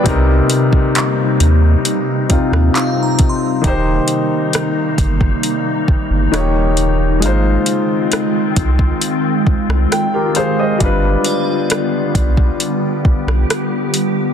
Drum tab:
HH |x-x-x-x-x-x-x-x-|x-x-x-x-x---x-x-|x-x-x-x-x---x-x-|x-x-x-x-x---x-x-|
CP |----x-------x---|----------------|----------------|----------------|
SD |-----------r----|----r-------r---|----r------rr---|----r------rr---|
BD |o--o------o---o-|o-----oo--o-----|------oo--o-----|o-----oo--o-----|